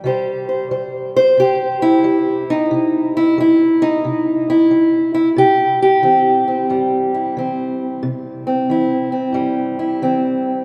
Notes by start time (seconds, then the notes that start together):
0.04 C3 G3 G4 C5
0.49 C5
0.71 G3 C5
1.16 C5
1.37 C3 G4
1.82 E4
2.04 G3
2.50 D#4
2.71 C3
3.17 E4
3.38 G3 E4
3.82 D#4
4.05 C3
4.50 E4
4.71 G3
5.14 E4
5.36 C3 G4
5.82 G4
6.03 E3 C4
6.48 C4
6.70 G2 G3
7.14 E4
7.37 E3 C4
8.03 C3
8.47 C4
8.70 E3 E4
9.12 C4
9.32 G2 G3
9.79 E4
10.02 E3 C4